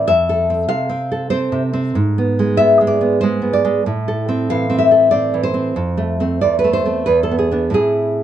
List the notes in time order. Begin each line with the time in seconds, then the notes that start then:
0.08 F2 E5
0.29 A4
0.50 C4
0.69 C3 F5
0.89 C4
1.12 A4
1.30 C4 C5
1.52 C3
1.73 C4
1.95 G#2
2.18 B3
2.39 G#3
2.57 B3 E5
2.81 G#3
2.87 D5
3.01 B3
3.21 G#3 C5
3.42 B3
3.53 D5
3.65 G#3
3.86 A2
4.08 A4
4.29 C4
4.50 E3 F5
4.70 C4
4.79 E5
4.91 A4
5.11 C4 D5
5.34 E3
5.43 C5
5.54 C4
5.76 F2
5.97 A3
6.20 A3 C4
6.41 E2 D5
6.59 B4
6.64 A3
6.73 C5
6.85 A3 C4
7.06 E2 B4
7.23 A4
7.31 B3
7.39 G#4
7.51 B3 D4
7.70 A2 C4 E4
7.74 G#4